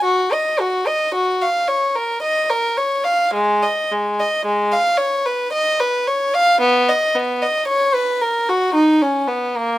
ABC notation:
X:1
M:3/4
L:1/16
Q:1/4=56
K:Ebm
V:1 name="Violin"
G e G e G f d B e B d f | A, e A, e A, f d c e c d f | C e C e d c B G E D C B, |]